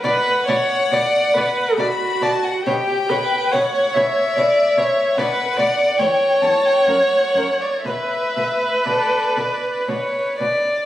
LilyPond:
<<
  \new Staff \with { instrumentName = "Violin" } { \time 3/4 \key b \minor \tempo 4 = 68 fis''2 b''8 a''16 fis''16 | g''4 fis''8 e''4. | fis''4 g''8 a''16 g''16 fis''8. d''16 | e''4 d''4 r4 | }
  \new Staff \with { instrumentName = "Violin" } { \time 3/4 \key b \minor d''8 d''8 d''8 d''8 d''8 d''8 | cis''8 cis''8 cis''8 cis''8 cis''8 cis''8 | d''8 d''8 cis''8 cis''8 ais'8 ais'8 | b'8 b'8 a'8 b'8 cis''8 d''8 | }
  \new Staff \with { instrumentName = "Viola" } { \time 3/4 \key b \minor b'8 cis''8 d''8 b'8 fis'4 | g'8 b'8 cis''4 d''8 cis''8 | b'8 d''8 cis''2 | b'2~ b'8 r8 | }
  \new Staff \with { instrumentName = "Cello" } { \clef bass \time 3/4 \key b \minor b,8 b,8 b,8 b,8 b,8 b,8 | b,8 b,8 b,8 b,8 b,8 b,8 | b,8 b,8 e,8 e,8 fis,8 fis,8 | b,8 b,8 b,8 b,8 b,8 b,8 | }
>>